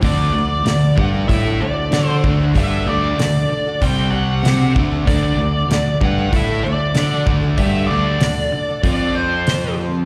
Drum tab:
HH |o-o-o-o-|o-o-o-o-|o-o-o-o-|o-o-o-o-|
SD |--o---o-|--o---o-|--o---o-|--o---o-|
BD |o--oo--o|o---o--o|o--oo--o|o---o---|